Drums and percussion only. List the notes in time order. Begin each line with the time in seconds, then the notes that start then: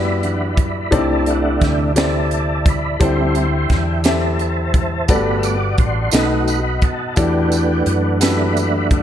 0.23 closed hi-hat
0.57 kick, closed hi-hat
0.92 kick, closed hi-hat
1.26 closed hi-hat
1.61 kick, snare, closed hi-hat
1.96 snare, closed hi-hat
2.31 closed hi-hat
2.66 kick, closed hi-hat
3.01 kick, closed hi-hat
3.35 closed hi-hat
3.69 kick, snare, closed hi-hat
4.04 snare, closed hi-hat
4.39 closed hi-hat
4.74 kick, closed hi-hat
5.08 kick, closed hi-hat, tambourine
5.43 closed hi-hat, tambourine
5.78 kick, closed hi-hat
6.11 snare, closed hi-hat, tambourine
6.48 closed hi-hat, tambourine
6.82 kick, closed hi-hat
7.16 kick, closed hi-hat, tambourine
7.52 closed hi-hat, tambourine
7.86 closed hi-hat
8.21 snare, closed hi-hat, tambourine
8.57 closed hi-hat, tambourine
8.91 kick, closed hi-hat